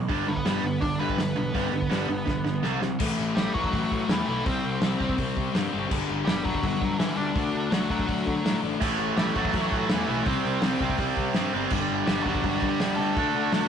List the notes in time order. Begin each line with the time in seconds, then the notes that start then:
0.08 G1 G2 D3 G3, kick, open hi-hat
0.27 G1 G2 D3 B3 B4
0.37 kick
0.44 G1 G2 D3 G3, snare, open hi-hat
0.62 G1 G2 D3
0.81 G1 G2 D3 D4 D5, kick, open hi-hat
0.99 G1 G2 D3 G3 B3 B4
1.09 kick
1.17 G1 G2 D3, snare, open hi-hat
1.35 B1 G2 D3
1.53 G1 G2 D3 G3, kick, open hi-hat
1.71 G1 G2 D3
1.82 kick
1.89 G1 G2 D3 G3, snare, open hi-hat
2.07 G1 G2 D3
2.26 G1 G2 D3, kick, snare
2.44 G1 G2 D3, snare
2.63 C2 C3 G3 C4, snare
2.81 C2 C3 G3, snare
2.99 A1 A2 E3 A3, kick, crash
3.19 A1
3.35 A1 A2 E3 G3 A3 G4, snare, open hi-hat
3.54 A1 A2 E3 F#3 A3 F#4, kick
3.64 kick
3.72 A1 A2 E3 A3, kick, open hi-hat
3.92 A2, kick
4.08 E2 A2 E3 A3 E4, snare, open hi-hat
4.26 B1 A2 E3 A3 E4
4.45 C2 C3 G3 C4 C5, kick, open hi-hat
4.64 C2
4.81 C2 C3 G3 C4, snare, open hi-hat
4.99 C2 C3 G3 C4, kick
5.09 kick
5.17 C2 C3 G3 C4, kick, open hi-hat
5.36 C3, kick
5.53 G2 C3 G3 C4, snare, open hi-hat
5.72 G1 C3 G3 C4
5.88 G1 G2 D3 G3, kick, crash
6.09 G1
6.25 G1 G2 D3 G3 G4, snare, open hi-hat
6.43 G1 G2 D3 F#3 G3 F#4, kick
6.55 kick
6.62 G1 G2 D3 G3, kick, open hi-hat
6.82 G2, kick
6.99 D2 G2 D3 E3 G3 E4, snare, open hi-hat
7.16 D2 G2 D3 G3 D4 D5
7.34 D2 D3 A3 D4, kick, open hi-hat
7.54 D2
7.70 D2 D3 F#3 A3 D4 F#4, snare, open hi-hat
7.88 D2 D3 F#3 A3 D4 F#4, kick
7.92 D3
7.99 kick
8.06 D2 D3 A3 D4, kick, open hi-hat
8.27 D3, kick
8.44 A2 D3 A3 D4, snare, open hi-hat
8.61 A1 D3 A3 D4
8.81 A1 A2 E3 A3, kick, crash
8.99 A1
9.16 A1 A2 E3 G3 A3 G4, snare, open hi-hat
9.36 A1 A2 E3 F#3 A3 F#4, kick
9.45 kick
9.53 A1 A2 E3 A3, kick, open hi-hat
9.72 A2, kick
9.89 E2 A2 E3 A3 E4, snare, open hi-hat
10.06 B1 A2 E3 A3 E4
10.23 C2 C3 G3 C4 C5, kick, open hi-hat
10.27 C4
10.45 C2
10.62 C2 C3 G3 C4, snare, open hi-hat
10.80 C2 C3 G3 C4, kick
10.90 kick
10.98 C2 C3 G3 C4, kick, open hi-hat
11.16 C3, kick
11.34 G2 C3 G3 C4, snare, open hi-hat
11.54 G1 C3 G3 C4
11.70 G1 G2 D3 G3, kick, crash
11.90 G1
12.07 G1 G2 D3 G3 G4, snare, open hi-hat
12.23 G1 G2 D3 F#3 G3 F#4, kick
12.35 kick
12.43 G1 G2 D3 G3, kick, open hi-hat
12.62 G2, kick
12.69 G3 G4
12.79 D2 G2 D3 G3, snare, open hi-hat
12.96 D2 G2 D3 G3 A3 A4
13.16 D2 D3 A3 D4, kick, open hi-hat
13.35 D2
13.52 D2 D3 A3 D4, snare, open hi-hat